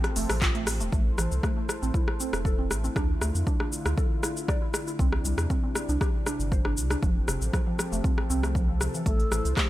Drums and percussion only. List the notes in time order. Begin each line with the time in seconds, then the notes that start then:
0.04 cross-stick, closed hi-hat
0.16 open hi-hat, cabasa
0.30 cross-stick, open hi-hat, cabasa
0.42 kick, clap, closed hi-hat, cabasa
0.55 closed hi-hat
0.67 cross-stick, open hi-hat, cabasa
0.80 closed hi-hat, cabasa
0.93 kick, cabasa
1.18 cross-stick, cabasa
1.32 cabasa
1.43 kick, cross-stick, cabasa
1.69 cross-stick, cabasa
1.83 cabasa
1.94 kick, cabasa
2.08 cross-stick
2.20 cabasa
2.33 cross-stick, cabasa
2.45 kick, cabasa
2.71 cross-stick, cabasa
2.84 cabasa
2.96 kick, cross-stick, cabasa
3.21 cross-stick, cabasa
3.35 cabasa
3.47 kick, cabasa
3.60 cross-stick
3.73 cabasa
3.86 cross-stick, cabasa
3.98 kick, cabasa
4.23 cross-stick, cabasa
4.37 cabasa
4.48 kick, cross-stick, cabasa
4.74 cross-stick, cabasa
4.88 cabasa
4.99 kick, cabasa
5.12 cross-stick
5.25 cabasa
5.38 cross-stick, cabasa
5.50 kick, cabasa
5.75 cross-stick, cabasa
5.89 cabasa
6.01 kick, cross-stick, cabasa
6.26 cross-stick, cabasa
6.40 cabasa
6.52 kick, cabasa
6.65 cross-stick
6.77 cabasa
6.91 cross-stick, cabasa
7.03 kick, cabasa
7.28 cross-stick, cabasa
7.42 cabasa
7.53 kick, cross-stick, cabasa
7.79 cross-stick, cabasa
7.93 cabasa
8.04 kick, cabasa
8.18 cross-stick
8.30 cabasa
8.43 cross-stick, cabasa
8.55 kick, cabasa
8.81 cross-stick, cabasa
8.95 cabasa
9.06 kick, closed hi-hat, cabasa
9.20 closed hi-hat
9.32 cross-stick, cabasa
9.45 closed hi-hat, cabasa
9.57 kick, cross-stick, clap, closed hi-hat, cabasa